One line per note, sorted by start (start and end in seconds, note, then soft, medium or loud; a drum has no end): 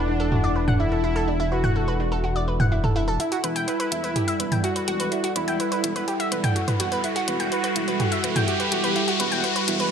0.00 3.17 E1 medium
0.00 0.70 D4 loud
0.00 3.16 D4 medium
0.00 9.91 E4 medium
0.00 3.16 A4 medium
0.00 9.91 A4 medium
0.00 3.20 D5 medium
0.00 3.16 E5 medium
0.00 3.16 F#5 medium
0.00 3.20 F#5 medium
0.08 0.15 D4 medium
0.20 0.27 A4 loud
0.32 0.39 F#4 medium
0.32 mid tom medium
0.44 0.51 D5 loud
0.56 0.63 B4 medium
0.68 0.75 F#5 loud
0.68 mid tom medium
0.80 1.42 E4 loud
0.80 0.87 E4 medium
0.92 0.96 A4 medium
1.04 1.08 E4 medium
1.16 1.23 A4 loud
1.28 1.32 D4 medium
1.40 1.47 E4 loud
1.52 2.38 F#4 loud
1.52 1.59 B4 medium
1.64 1.71 F#5 loud
1.64 mid tom medium
1.76 1.80 A4 medium
1.88 1.92 B4 medium
2.00 2.07 D4 medium
2.12 2.19 A4 medium
2.24 2.31 F#4 medium
2.36 2.43 D5 loud
2.48 2.55 B4 medium
2.60 2.67 F#5 loud
2.60 mid tom loud
2.72 2.79 E4 medium
2.84 2.88 A4 medium
2.84 mid tom medium
2.96 3.00 E4 loud
3.08 3.15 A4 loud
3.20 9.91 G3 medium
3.20 9.91 E4 medium
3.20 3.24 E4 medium
3.20 4.54 E4 loud
3.20 9.91 F#5 medium
3.20 closed hi-hat medium
3.20 riser medium
3.32 3.39 F#4 loud
3.32 closed hi-hat medium
3.44 3.53 E1 medium
3.44 3.51 B4 medium
3.44 closed hi-hat loud
3.56 3.65 E1 medium
3.56 7.16 D5 medium
3.56 3.63 G5 loud
3.56 closed hi-hat medium
3.68 3.72 B4 medium
3.68 closed hi-hat medium
3.80 3.84 B4 loud
3.80 closed hi-hat medium
3.92 4.01 E1 medium
3.92 3.99 E4 medium
3.92 closed hi-hat loud
4.04 4.13 E1 medium
4.04 4.11 B4 medium
4.04 closed hi-hat medium
4.16 4.23 G4 medium
4.16 closed hi-hat medium
4.16 mid tom medium
4.28 4.35 E5 loud
4.28 closed hi-hat medium
4.40 4.49 E1 medium
4.40 4.47 B4 medium
4.40 closed hi-hat loud
4.52 4.61 E2 medium
4.52 4.59 G5 loud
4.52 closed hi-hat medium
4.52 mid tom medium
4.64 5.26 F#4 loud
4.64 4.71 F#4 medium
4.64 closed hi-hat medium
4.76 4.80 B4 medium
4.76 closed hi-hat medium
4.88 4.97 E1 medium
4.88 4.92 F#4 loud
4.88 closed hi-hat loud
5.00 5.09 E1 medium
5.00 5.07 B4 loud
5.00 closed hi-hat medium
5.12 5.16 E4 medium
5.12 closed hi-hat medium
5.24 5.31 F#4 loud
5.24 closed hi-hat medium
5.36 5.45 E1 loud
5.36 6.22 E4 medium
5.36 5.43 B4 medium
5.36 closed hi-hat loud
5.48 5.57 E1 medium
5.48 5.55 G5 loud
5.48 closed hi-hat medium
5.60 5.64 B4 medium
5.60 closed hi-hat medium
5.72 5.76 B4 medium
5.72 closed hi-hat medium
5.84 5.93 E1 loud
5.84 5.91 E4 medium
5.84 closed hi-hat loud
5.96 6.05 E1 medium
5.96 6.03 B4 loud
5.96 closed hi-hat medium
6.08 6.15 G4 medium
6.08 closed hi-hat medium
6.20 6.27 E5 loud
6.20 closed hi-hat medium
6.32 6.41 E1 medium
6.32 6.39 B4 medium
6.32 closed hi-hat loud
6.44 6.53 E2 medium
6.44 6.51 G5 loud
6.44 closed hi-hat medium
6.44 mid tom loud
6.56 6.63 F#4 medium
6.56 closed hi-hat medium
6.68 6.72 B4 medium
6.68 closed hi-hat medium
6.68 mid tom medium
6.80 6.89 E1 medium
6.80 6.84 F#4 loud
6.80 closed hi-hat loud
6.92 7.01 E1 medium
6.92 6.99 B4 loud
6.92 closed hi-hat medium
7.01 7.08 E4 medium
7.01 8.38 F#4 loud
7.01 9.91 E5 medium
7.01 closed hi-hat medium
7.16 7.23 F#4 loud
7.16 closed hi-hat medium
7.28 7.37 E1 loud
7.28 7.35 B4 medium
7.28 closed hi-hat loud
7.40 7.49 E1 medium
7.40 7.47 G5 loud
7.40 closed hi-hat medium
7.52 7.56 B4 medium
7.52 closed hi-hat medium
7.64 7.68 B4 loud
7.64 closed hi-hat medium
7.76 7.85 E1 medium
7.76 7.83 E4 medium
7.76 closed hi-hat loud
7.88 7.97 E1 medium
7.88 7.95 B4 loud
7.88 closed hi-hat medium
8.00 8.07 G4 medium
8.00 closed hi-hat medium
8.00 mid tom medium
8.12 8.19 E5 loud
8.12 closed hi-hat medium
8.24 8.33 E1 loud
8.24 8.31 B4 medium
8.24 closed hi-hat loud
8.36 8.45 E2 medium
8.36 8.43 G5 loud
8.36 closed hi-hat medium
8.36 mid tom loud
8.48 8.55 F#4 medium
8.48 9.10 G4 medium
8.48 closed hi-hat soft
8.60 8.64 B4 medium
8.60 closed hi-hat medium
8.72 8.81 E1 medium
8.72 8.76 F#4 loud
8.72 closed hi-hat loud
8.84 8.93 E1 medium
8.84 8.91 B4 loud
8.84 closed hi-hat medium
8.96 9.00 E4 medium
8.96 closed hi-hat soft
9.08 9.15 F#4 loud
9.08 closed hi-hat soft
9.20 9.29 E1 loud
9.20 9.91 F#4 loud
9.20 9.27 B4 medium
9.20 closed hi-hat loud
9.32 9.41 E1 medium
9.32 9.39 G5 loud
9.32 closed hi-hat soft
9.44 9.48 B4 medium
9.44 closed hi-hat medium
9.56 9.60 B4 loud
9.56 closed hi-hat medium
9.68 9.77 E1 loud
9.68 9.75 E4 medium
9.68 closed hi-hat loud
9.80 9.89 E1 medium
9.80 9.87 B4 loud
9.80 closed hi-hat soft